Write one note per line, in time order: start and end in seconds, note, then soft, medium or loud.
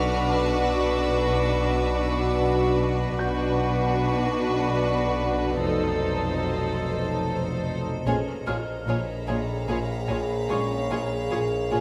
0.00 3.16 B1 medium
0.00 3.17 B1 medium
0.00 3.16 B2 soft
0.00 3.16 D4 medium
0.00 3.16 F#4 medium
0.00 3.17 F#4 soft
0.00 3.16 B4 soft
0.00 3.17 B4 soft
0.00 3.16 D5 soft
0.00 2.76 D6 soft
0.00 2.76 E6 soft
0.00 0.45 F6 soft
0.00 1.94 B6 soft
0.45 1.14 F#6 soft
3.18 5.59 B1 medium
3.18 8.03 B1 medium
3.18 5.59 B2 soft
3.18 5.59 D4 soft
3.18 5.58 F#4 soft
3.18 5.59 F#4 soft
3.18 5.59 B4 soft
3.18 5.59 B4 medium
3.18 5.58 D5 soft
3.18 5.59 G6 soft
5.62 7.82 F1 soft
5.62 7.83 F2 soft
5.62 7.82 D#4 soft
5.62 7.82 A4 soft
5.62 8.06 A4 soft
5.62 8.06 C5 soft
5.62 7.83 C5 soft
5.62 8.06 D#5 soft
8.05 8.14 A#1 soft
8.05 11.80 A#1 medium
8.05 8.14 A#2 soft
8.05 8.35 G#3 soft
8.05 8.36 C#4 soft
8.05 8.15 F4 soft
8.05 8.14 G#4 soft
8.05 11.80 G#4 soft
8.05 11.80 C#5 soft
8.05 8.15 C#5 soft
8.05 11.80 F5 soft
8.05 11.80 A#5 soft
8.47 8.55 A#1 soft
8.47 8.55 A#2 soft
8.47 8.55 F4 soft
8.47 8.55 G#4 soft
8.47 8.55 C#5 soft
8.47 10.86 F6 soft
8.87 8.95 A#1 soft
8.87 8.95 A#2 soft
8.87 8.96 F4 soft
8.87 8.96 G#4 soft
8.87 8.96 C#5 soft
8.87 11.80 B5 soft
9.27 9.36 A#1 soft
9.27 9.36 A#2 soft
9.27 9.37 F4 soft
9.27 9.35 G#4 soft
9.27 9.36 C#5 soft
9.68 9.77 A#1 soft
9.68 9.76 A#2 soft
9.68 9.77 F4 soft
9.68 9.77 G#4 soft
9.68 9.77 C#5 soft
10.09 10.17 A#1 soft
10.09 10.17 A#2 soft
10.09 10.18 F4 soft
10.09 10.17 G#4 soft
10.09 10.17 C#5 soft
10.49 10.58 A#1 soft
10.49 10.57 A#2 soft
10.49 10.79 G#3 soft
10.49 10.79 C#4 soft
10.49 10.58 F4 soft
10.49 10.57 G#4 soft
10.49 10.59 C#5 soft
10.49 11.80 C#6 soft
10.90 10.98 A#1 soft
10.90 10.99 A#2 soft
10.90 10.99 F4 soft
10.90 10.98 G#4 soft
10.90 10.99 C#5 soft
11.31 11.39 A#1 soft
11.31 11.39 A#2 soft
11.31 11.39 F4 soft
11.31 11.39 G#4 soft
11.31 11.40 C#5 soft
11.72 11.80 A#1 soft
11.72 11.80 A#2 soft
11.72 11.80 F4 soft
11.72 11.80 G#4 soft
11.72 11.80 C#5 soft